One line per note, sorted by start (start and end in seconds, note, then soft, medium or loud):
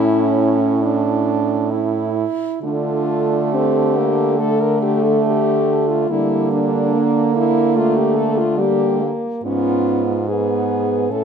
0.00 2.25 A2 medium
0.00 0.84 C#4 medium
0.00 2.17 C#4 medium
0.00 1.72 E4 medium
0.82 1.72 D4 medium
1.71 2.62 E4 medium
2.62 6.05 D3 medium
2.62 4.35 A3 medium
2.62 3.55 D4 medium
2.62 3.54 F4 medium
3.53 3.99 C4 medium
3.53 4.40 G4 medium
3.97 4.41 A#3 medium
4.39 6.10 A3 medium
4.39 6.06 A3 medium
4.39 4.63 A4 medium
4.61 4.82 A#4 medium
4.82 5.05 G4 medium
5.04 5.25 A4 medium
5.26 5.91 G4 medium
5.89 6.12 F4 medium
6.10 9.12 D3 medium
6.10 6.96 G3 medium
6.10 8.42 A#3 medium
6.10 6.52 E4 medium
6.53 7.34 D4 medium
6.94 7.35 A#3 medium
7.35 7.78 A#3 medium
7.35 7.78 E4 medium
7.76 8.60 A3 medium
7.76 7.99 F4 medium
7.97 8.18 G4 medium
8.16 8.39 A4 medium
8.38 8.61 F4 medium
8.59 9.04 G3 medium
8.59 9.15 A#3 medium
8.59 9.16 G4 medium
9.02 9.44 A#3 medium
9.44 11.06 G#2 medium
9.44 10.24 B3 medium
9.44 10.01 C#4 medium
9.44 10.30 F4 medium
10.28 11.12 B3 medium
10.28 11.12 B3 soft
10.28 11.12 G#4 medium
11.10 11.24 A2 soft
11.10 11.24 A3 medium
11.10 11.24 C#4 soft
11.10 11.24 A4 medium